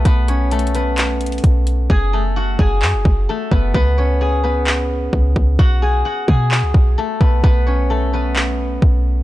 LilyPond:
<<
  \new Staff \with { instrumentName = "Guzheng" } { \time 4/4 \key b \dorian \tempo 4 = 130 <b b'>8 <cis' cis''>8 <a a'>8 <b b'>2~ <b b'>8 | <gis' gis''>8 <a a'>8 <fis' fis''>8 <gis' gis''>4. <a a'>8 <b b'>8 | <b b'>8 <cis' cis''>8 <gis' gis''>8 <b b'>2~ <b b'>8 | <fis' fis''>8 <gis' gis''>8 <fis' fis''>8 <gis' gis''>4. <a a'>8 <b b'>8 |
<b b'>8 <cis' cis''>8 <a a'>8 <b b'>2~ <b b'>8 | }
  \new Staff \with { instrumentName = "808-style bass" } { \clef bass \time 4/4 \key b \dorian b,,2. b,,4 | fis,,4. fis,,8 fis,16 fis,,16 fis,,8 r8 fis,,8 | cis,2. cis,8 cis,8 | b,,4 r8 b,8. cis,16 b,,8 r8 b,,8 |
b,,2. b,,4 | }
  \new DrumStaff \with { instrumentName = "Drums" } \drummode { \time 4/4 <hh bd>8 hh8 \tuplet 3/2 { hh16 hh16 hh16 hh16 r16 r16 } <hc hh>8 hh32 hh32 hh32 hh32 <hh bd>8 hh8 | bd4 r8 bd8 hc8 bd8 r8 bd8 | bd4 r4 hc4 bd8 bd8 | bd4 r8 bd8 hc8 bd8 r8 bd8 |
bd4 r4 hc4 bd4 | }
>>